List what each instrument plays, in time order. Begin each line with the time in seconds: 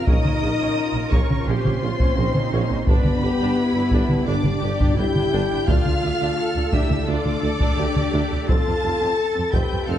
Already playing: cello section A#4
0.07 tuba A#1, double bass section A#1, viola section C#4 F4, french horn section D#4, violin section D#5 D#6, taiko
0.25 double bass section A#1, viola section C#4, taiko mid
0.42 tuba A#1, double bass section A#1, viola section C#4
0.59 double bass section A#1, viola section C#4
0.94 double bass section A#1, viola section C#4
1.10 tuba A#1, double bass section A#1, viola section C#4, french horn section C#4, violin section C#5 C#6, taiko
1.30 double bass section A#1, viola section C#4, taiko mid
1.45 double bass section A#1, tuba A#1, french horn section C4, viola section C#4, cello section G4, violin section C5 C6
1.65 double bass section A#1, viola section C#4, taiko mid
1.82 double bass section A#1, tuba A#1, viola section C#4, cello section F4
2.00 double bass section A#1, viola section C#4, taiko
2.17 tuba A#1, double bass section A#1, viola section C#4, cello section D#4
2.35 double bass section A#1, viola section C#4, taiko mid
2.52 tuba A#1, double bass section A#1, viola section C#4
2.69 double bass section A#1, viola section C#4
2.86 double bass section G1, tuba G1, french horn section B3, cello section D4, viola section D4 G4, violin section B4 B5, taiko
3.04 double bass section G1, viola section D4, taiko mid
3.21 double bass section G1, tuba G1, viola section D4, cello section G4
3.39 double bass section G1, viola section D4
3.56 cello section E4
3.74 double bass section G1, viola section D4
3.91 double bass section G1, tuba G1, viola section D4, taiko
4.09 double bass section G1, viola section D4, taiko mid
4.26 double bass section G1, tuba G1, french horn section D4, cello section D4, viola section D4, violin section D5 D6
4.44 double bass section G1, viola section D4, taiko mid
4.62 double bass section G1, tuba G1, viola section D4, cello section G4
4.79 double bass section G1, viola section D4, taiko
4.96 double bass section G1, tuba G1, viola section D4, cello section E4, french horn section G4, violin section G5 G6
5.16 double bass section G1, viola section D4, taiko mid
5.32 tuba G1, double bass section G1, viola section D4
5.51 double bass section G1, viola section D4
5.67 tuba D2, double bass section D2, viola section D4 A4, cello section F4, french horn section F4, violin section F5 F6, taiko
5.85 double bass section D2, viola section D4, taiko mid
6.02 double bass section D2, tuba D2, viola section D4
6.20 double bass section D2, viola section D4
6.38 cello section A4
6.55 double bass section D2, viola section D4
6.72 double bass section D2, tuba D2, viola section D4, french horn section E4, cello section G4, violin section E5 E6, taiko
6.89 double bass section D2, viola section D4, taiko mid
7.07 tuba D2, double bass section D2, viola section D4, french horn section D4, cello section F4, violin section D5 D6
7.25 double bass section D2, viola section D4, taiko mid
7.42 tuba D2, double bass section D2, viola section D4, cello section A4
7.60 double bass section D2, viola section D4, taiko
7.76 double bass section D2, tuba D2, viola section D4, cello section G4
7.95 double bass section D2, viola section D4, taiko mid
8.12 double bass section D2, tuba D2, viola section D4
8.30 double bass section D2, viola section D4
8.47 tuba F1, double bass section F2, viola section C4, cello section F4, french horn section A4, violin section A5 A6, taiko
8.66 double bass section F2, viola section C4
8.83 tuba F1, double bass section F2, viola section C4
9.00 double bass section F2, viola section C4
9.17 cello section A4
9.34 double bass section F2, viola section C4
9.52 tuba F1, double bass section F2, viola section C4, french horn section G4, cello section B4, violin section G5 G6, taiko
9.70 double bass section F2, viola section C4
9.86 tuba F1, double bass section F2, viola section C4, french horn section F4, cello section A4, violin section F5 F6